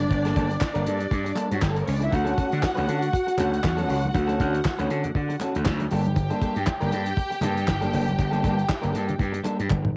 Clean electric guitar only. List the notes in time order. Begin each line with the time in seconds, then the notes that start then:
0.00 muted clean electric guitar stroke
0.10 muted clean electric guitar stroke
0.25 G3 A#3 D4 A4
0.36 G3 A#3 D4 A4
0.50 muted clean electric guitar stroke
0.61 muted clean electric guitar stroke
0.74 G3 A#3 D4 A#4
0.86 G3 A#3 D4 A4
0.99 muted clean electric guitar stroke
1.11 muted clean electric guitar stroke
1.25 muted clean electric guitar stroke
1.35 G3 A#3 D4 A4
1.49 muted clean electric guitar stroke
1.61 muted clean electric guitar stroke
1.75 muted clean electric guitar stroke
2.00 muted clean electric guitar stroke
2.11 muted clean electric guitar stroke
2.24 A3 C#4 F#4 A4
2.36 A3 C#4 F#4 A4
2.50 muted clean electric guitar stroke
2.61 muted clean electric guitar stroke
2.75 A3 C#4 F#4 B4
2.87 A3 C#4 F#4 A4
3.02 muted clean electric guitar stroke
3.13 muted clean electric guitar stroke
3.27 muted clean electric guitar stroke
3.38 A3 C#4 F#4 A4
3.52 muted clean electric guitar stroke
3.63 muted clean electric guitar stroke
3.77 A3 C#4 F#4 A4
3.87 A3 C#4 F#4 A4
4.02 muted clean electric guitar stroke
4.13 muted clean electric guitar stroke
4.27 A3 C#4 F#4 A4
4.39 A3 C#4 F#4 A4
4.53 muted clean electric guitar stroke
4.64 muted clean electric guitar stroke
4.79 A3 C#4 F#4 B4
4.89 A3 C#4 F#4 A4
5.03 muted clean electric guitar stroke
5.15 muted clean electric guitar stroke
5.29 muted clean electric guitar stroke
5.41 A3 C#4 F#4 A4
5.54 muted clean electric guitar stroke
5.80 muted clean electric guitar stroke
5.91 G3 A#3 D4 A4
6.05 muted clean electric guitar stroke
6.15 muted clean electric guitar stroke
6.30 G3 A#3 D4 A4
6.42 G3 A#3 D4 A4
6.56 muted clean electric guitar stroke
6.66 muted clean electric guitar stroke
6.80 G3 A#3 D4 A#4
6.91 G3 A#3 D4 A4
7.06 muted clean electric guitar stroke
7.17 muted clean electric guitar stroke
7.30 muted clean electric guitar stroke
7.41 G3 A#3 D4 A4
7.56 muted clean electric guitar stroke
7.67 muted clean electric guitar stroke
7.81 G3 A#3 D4 A4
7.92 G3 A#3 D4 A4
8.07 muted clean electric guitar stroke
8.18 muted clean electric guitar stroke
8.31 G3 A#3 D4 A4
8.42 G3 A#3 D4 A4
8.57 muted clean electric guitar stroke
8.68 muted clean electric guitar stroke
8.82 G3 A#3 D4 A#4
8.92 G3 A#3 D4 A4
9.07 muted clean electric guitar stroke
9.18 muted clean electric guitar stroke
9.32 muted clean electric guitar stroke
9.43 G3 A#3 D4 A4
9.58 muted clean electric guitar stroke
9.68 muted clean electric guitar stroke
9.83 muted clean electric guitar stroke